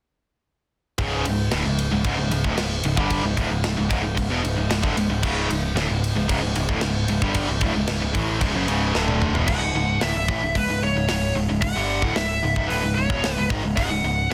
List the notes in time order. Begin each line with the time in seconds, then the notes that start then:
0.98 C#1 C#2 G#2 C#3, kick, ride
1.25 C#1 C#2 G#2, ride
1.51 D1 D2 A2, snare, ride
1.65 C#1 C#2 G#2
1.79 ride
1.92 C#1 C#2 G#2
2.04 C#1 C#2 G#2, kick, ride
2.18 C#1 C#2 G#2
2.31 C#1 C#2 G#2, ride
2.44 D1 D2 A2, kick
2.57 C#1 C#2 G#2, snare, ride
2.84 C#1 C#2 G#2, ride
2.97 G1 G2 D3 G3, kick
3.10 kick, ride
3.23 C#1 C#2 G#2
3.37 D1 D2 A2, kick, ride
3.50 C#1 C#2 G#2
3.64 C#1 C#2 G#2, snare, ride
3.76 C#1 C#2 G#2
3.89 C#1 C#2 G#2, kick, ride
4.02 C#1 C#2 G#2
4.15 C#1 C#2 G#2, kick, ride
4.19 C#2 G#2
4.30 E1 E2 B2
4.44 C#1 C#2 G#2, ride
4.58 C#1 C#2 G#2
4.69 C#1 C#2 G#2, snare, ride
4.82 G1 G2 D3, kick
4.97 C#1 C#2 G#2, ride
5.10 C#1 C#2 G#2
5.23 C#1 C#2 G#2 C#3, kick, crash
5.50 C#1 C#2 G#2, ride
5.75 D1 D2 A2, snare, ride
5.89 C#1 C#2 G#2
6.04 ride
6.16 C#1 C#2 G#2
6.29 C#1 C#2 G#2, kick, ride
6.42 C#1 C#2 G#2
6.55 C#1 C#2 G#2, ride
6.69 D1 D2 A2, kick
6.81 C#1 C#2 G#2, snare, ride
7.08 C#1 C#2 G#2, ride
7.22 G1 G2 D3 G3, kick
7.34 kick, ride
7.48 C#1 C#2 G#2
7.61 D1 D2 A2, kick, ride
7.74 C#1 C#2 G#2
7.87 C#1 C#2 G#2, snare, ride
8.00 C#1 C#2 G#2
8.13 A1 A2 E3 A3, kick, ride
8.41 C#1 C#2 G#2, kick, ride
8.54 F#1 F#2 C#3
8.67 C#1 C#2 G#2 C#3, ride
8.93 D1 D2 A2 D3, snare
9.08 high tom
9.22 mid tom
9.34 E1 E2 B2, floor tom
9.47 C#1 C#2 G#2 F#5, kick, crash
9.61 C#1 C#2 G#2
9.75 C#1 C#2 G#2
10.01 D1 D2 A2 E5, snare, open hi-hat
10.15 C#1 C#2 G#2
10.28 A1 A2 E3, kick
10.42 C#1 C#2 G#2
10.55 C#1 C#2 G#2 B4, kick, open hi-hat
10.68 C#1 C#2 G#2
10.82 C#1 C#2 G#2 C#5
10.95 C#1 C#2 G#2
11.09 C#1 C#2 G#2, snare, open hi-hat
11.35 C#1 C#2 G#2
11.49 C#1 C#2 G#2
11.61 C#1 C#2 G#2 F#5, kick, open hi-hat
11.75 G1 G2 D3 G3
12.02 D1 D2 A2, kick
12.16 C#1 C#2 G#2 E5, snare, open hi-hat
12.43 C#1 C#2 G#2
12.56 C#1 C#2 G#2, kick
12.67 D1 D2 B4, open hi-hat
12.72 A2
12.83 C#1 C#2 G#2
12.95 C#1 C#2 G#2 C#5
13.10 E1 E2 B2, kick
13.24 C#1 C#2 G#2, snare, open hi-hat
13.37 C#1 C#2 G#2
13.50 G#1 G#2 D#3, kick
13.64 C#1 C#2 G#2
13.77 C#1 C#2 G#2 F#5, kick, open hi-hat
13.90 C#1 C#2 G#2
14.04 C#1 C#2 G#2
14.30 D2